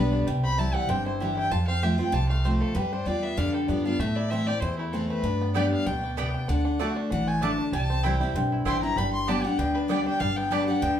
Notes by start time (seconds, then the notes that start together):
Already playing: B1 D3 G3 B3 D4 G4 B4
0.12 D4
0.27 C2 C3 G3
0.43 C4 B5
0.58 E3 G3 C4 E4 A5
0.75 G3 F#5
0.89 G1 G2 C4 G5
1.06 E4 C5
1.20 E3 G3 C4 E4 E5
1.37 E4 G5
1.51 F2 F4 A5
1.67 C4 F5
1.82 F3 A3 C4 F4 G4 E5
1.98 C4 F4 G5
2.12 C2 C3 F4 A5
2.29 A3 F5
2.44 F3 A3 C4 F4 C5
2.61 F4 A4
2.75 G2 G3 B4
2.92 D4 C5
3.06 E2 G3 B3 F4 D5
3.23 B3 E5
3.37 F2 D3 D4 F5
3.54 G3 A4
3.68 G2 G3 B3 F4 D5
3.85 B3 D4 F4 F5
3.99 A2 A3 E5
4.16 E4 D5
4.30 E3 A3 C4 E4 E5
4.47 C4 E4 G4 D5
4.60 E2 E4 C5
4.78 A3 E4
4.92 E3 A3 C4 E4 A4
5.09 A3 B4
5.23 G2 D4
5.41 B3
5.54 G3 B3 D4 G4 D5 G5
5.72 B3 F5
5.86 D2 B2 D4 G5
6.03 G3
6.17 C3 B3 G4 D5 G5
6.34 D4
6.48 D2 D3 D4 F#5
6.65 D4
6.79 D3 A3 D4 F#4 D5 A5
6.96 D4
7.10 A1 E3 D4 F#5
7.27 A3 G#5
7.41 D3 A3 D4 F#4 D5 A5
7.58 D4
7.72 C2 C3 G3 A5
7.90 C4
8.03 E3 G3 C4 E4 C5 G5
8.21 G3 C4 E4
8.34 B1 G2 C4
8.52 E4
8.65 A1 E3 G3 C4 E4 C5 G5 C6
8.82 C4 E4 A#5
8.96 G1 G2 G3 B5
9.13 C6
9.27 G3 B3 D4 G4 D5 G5 A5
9.44 G3 D4 G4 F#5
9.58 D2 D3 B3 G5
9.74 D4 B4
9.88 G3 B3 D4 G4 D5 G5
10.05 D4 G5
10.20 G1 G2 G3 F5
10.36 B3 G5
10.51 G3 B3 D4 G4 D5 G5 A5
10.67 G3 D4 G4 F#5
10.82 D2 D3 B3 G5